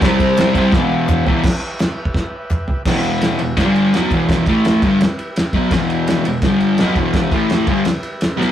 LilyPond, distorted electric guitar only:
\new Staff \with { instrumentName = "Distorted electric guitar" } { \clef bass \time 4/4 \key e \minor \tempo 4 = 168 <c g c'>4. <c g c'>8 <e, b, e>4. <e, b, e>8 | r1 | <e, b, e>4. <e, b,>8 <g, d g>4 <b, fis b>8 <e, b, e>8~ | <e, b, e>8 <a, e a>4 <g, d g>8 r4. <b, fis b>8 |
<e, b, e>4. <e, b,>8 <g, d g>4 <b, fis b>8 <e, b, e>8~ | <e, b, e>8 <a, e a>4 <g, d g>8 r4. <b, fis b>8 | }